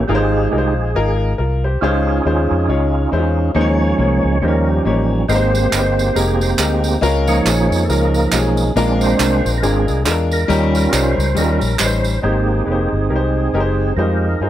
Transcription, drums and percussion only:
5.29 tambourine medium
5.55 tambourine medium
5.73 clap medium
5.73 tambourine medium
5.99 tambourine medium
6.16 tambourine medium
6.41 tambourine medium
6.59 clap loud
6.59 tambourine loud
6.84 tambourine medium
7.03 tambourine medium
7.27 tambourine medium
7.46 clap medium
7.46 tambourine loud
7.72 tambourine medium
7.90 tambourine medium
8.14 tambourine medium
8.32 clap loud
8.32 tambourine medium
8.57 tambourine medium
8.77 tambourine medium
9.01 tambourine medium
9.20 clap loud
9.20 tambourine loud
9.46 tambourine medium
9.63 tambourine medium
9.88 tambourine soft
10.06 clap loud
10.06 tambourine medium
10.31 tambourine medium
10.50 tambourine medium
10.75 tambourine medium
10.93 clap medium
10.93 tambourine loud
11.20 tambourine medium
11.37 tambourine medium
11.61 tambourine medium
11.79 clap loud
11.79 tambourine loud
12.04 tambourine medium

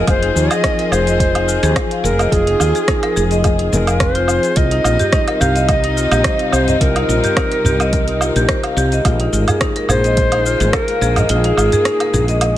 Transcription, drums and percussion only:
0.07 kick loud
0.07 closed hi-hat medium
0.07 cabasa soft
0.07 low woodblock medium
0.23 closed hi-hat soft
0.37 cabasa medium
0.51 closed hi-hat soft
0.51 cabasa soft
0.51 low woodblock medium
0.64 kick loud
0.64 cross-stick loud
0.64 closed hi-hat medium
0.64 cabasa soft
0.79 closed hi-hat soft
0.92 cabasa medium
0.92 low woodblock medium
1.07 closed hi-hat soft
1.07 cabasa soft
1.20 kick loud
1.20 closed hi-hat medium
1.20 cabasa soft
1.35 closed hi-hat soft
1.35 low woodblock medium
1.49 cabasa medium
1.63 closed hi-hat soft
1.63 cabasa soft
1.76 kick loud
1.76 cross-stick loud
1.76 closed hi-hat medium
1.76 cabasa soft
1.76 low woodblock medium
1.91 closed hi-hat soft
2.05 cabasa medium
2.19 closed hi-hat soft
2.19 cabasa soft
2.19 low woodblock medium
2.32 kick loud
2.32 closed hi-hat medium
2.32 cabasa soft
2.47 closed hi-hat soft
2.60 cabasa medium
2.60 low woodblock medium
2.75 closed hi-hat soft
2.75 cabasa soft
2.88 kick loud
2.88 cross-stick loud
2.88 closed hi-hat medium
2.88 cabasa soft
3.03 closed hi-hat soft
3.03 low woodblock medium
3.17 cabasa medium
3.31 closed hi-hat soft
3.31 cabasa soft
3.44 kick loud
3.44 closed hi-hat medium
3.44 cabasa soft
3.44 low woodblock medium
3.59 closed hi-hat soft
3.73 cabasa medium
3.87 closed hi-hat soft
3.87 cabasa soft
3.87 low woodblock medium
4.00 kick loud
4.00 cross-stick loud
4.00 closed hi-hat medium
4.00 cabasa soft
4.15 closed hi-hat soft
4.28 cabasa medium
4.28 low woodblock medium
4.43 closed hi-hat soft
4.43 cabasa soft
4.56 kick loud
4.56 closed hi-hat medium
4.56 cabasa soft
4.71 closed hi-hat soft
4.84 cabasa medium
4.84 low woodblock medium
4.99 closed hi-hat soft
4.99 udu loud
4.99 cabasa soft
5.12 kick loud
5.12 cross-stick medium
5.12 closed hi-hat medium
5.12 cabasa soft
5.28 closed hi-hat soft
5.28 low woodblock medium
5.41 udu medium
5.41 cabasa medium
5.56 closed hi-hat soft
5.56 cabasa soft
5.69 kick loud
5.69 closed hi-hat medium
5.69 cabasa soft
5.69 low woodblock medium
5.84 closed hi-hat soft
5.97 cabasa medium
6.11 closed hi-hat soft
6.11 cabasa soft
6.11 low woodblock medium
6.24 kick loud
6.24 cross-stick loud
6.24 closed hi-hat medium
6.24 cabasa soft
6.39 closed hi-hat soft
6.52 cabasa medium
6.52 low woodblock medium
6.68 closed hi-hat soft
6.68 udu medium
6.68 cabasa soft
6.81 kick medium
6.81 closed hi-hat medium
6.81 cabasa soft
6.96 closed hi-hat soft
6.96 low woodblock medium
7.09 cabasa medium
7.24 closed hi-hat soft
7.24 udu medium
7.24 cabasa soft
7.37 kick loud
7.37 cross-stick loud
7.37 closed hi-hat medium
7.37 cabasa soft
7.37 low woodblock medium
7.52 closed hi-hat soft
7.64 udu medium
7.64 cabasa medium
7.80 closed hi-hat soft
7.80 cabasa soft
7.80 low woodblock medium
7.93 kick loud
7.93 closed hi-hat medium
7.93 cabasa soft
8.08 closed hi-hat soft
8.21 cabasa medium
8.21 low woodblock medium
8.36 closed hi-hat soft
8.36 cabasa soft
8.49 kick loud
8.49 cross-stick loud
8.49 closed hi-hat medium
8.49 cabasa soft
8.64 closed hi-hat soft
8.64 low woodblock medium
8.77 cabasa medium
8.92 closed hi-hat soft
8.92 cabasa soft
9.05 kick loud
9.05 closed hi-hat medium
9.05 cabasa soft
9.05 low woodblock medium
9.20 closed hi-hat soft
9.33 cabasa medium
9.48 closed hi-hat soft
9.48 udu medium
9.48 cabasa soft
9.48 low woodblock medium
9.61 kick medium
9.61 cross-stick loud
9.61 closed hi-hat medium
9.61 cabasa soft
9.76 closed hi-hat soft
9.88 udu medium
9.88 cabasa medium
9.88 low woodblock medium
10.04 closed hi-hat soft
10.04 cabasa soft
10.17 kick loud
10.17 closed hi-hat medium
10.17 cabasa soft
10.32 closed hi-hat soft
10.32 low woodblock medium
10.46 cabasa medium
10.60 closed hi-hat soft
10.60 cabasa soft
10.73 kick medium
10.73 cross-stick loud
10.73 closed hi-hat medium
10.73 cabasa soft
10.73 low woodblock medium
10.88 closed hi-hat soft
11.02 cabasa medium
11.16 closed hi-hat soft
11.16 udu medium
11.16 cabasa soft
11.16 low woodblock medium
11.29 closed hi-hat medium
11.29 cabasa soft
11.44 closed hi-hat soft
11.57 cabasa medium
11.57 low woodblock medium
11.72 closed hi-hat soft
11.72 udu medium
11.72 cabasa soft
11.85 cross-stick loud
11.85 closed hi-hat medium
11.85 cabasa soft
12.00 closed hi-hat soft
12.00 low woodblock medium
12.14 udu medium
12.14 cabasa medium
12.28 closed hi-hat soft
12.28 cabasa soft
12.41 closed hi-hat medium
12.41 cabasa soft
12.41 low woodblock medium

